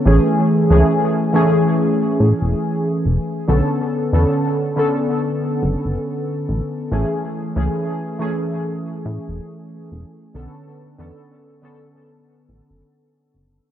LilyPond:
<<
  \new Staff \with { instrumentName = "Synth keys" } { \time 4/4 \key a \major \tempo 4 = 70 <e a cis' gis'>8. <e a cis' gis'>8. <e a cis' gis'>2~ <e a cis' gis'>8 | <d b cis' a'>8. <d b cis' a'>8. <d b cis' a'>2~ <d b cis' a'>8 | <e a cis' gis'>8. <e a cis' gis'>8. <e a cis' gis'>2~ <e a cis' gis'>8 | <d b cis' a'>8. <d b cis' a'>8. <d b cis' a'>2~ <d b cis' a'>8 | }
  \new Staff \with { instrumentName = "Analog synth bass" } { \clef bass \time 4/4 \key a \major a,,16 r8 cis,16 r4. a,16 e,,16 r8 e,,16 r16 | b,,16 r8 e,16 r4. fis,,16 fis,,16 r8 a,,16 r16 | a,,16 r8 cis,16 r4. a,16 e,,16 r8 e,,16 r16 | b,,16 r8 e,16 r4. a,,16 fis,,16 r8 fis,,16 r16 | }
>>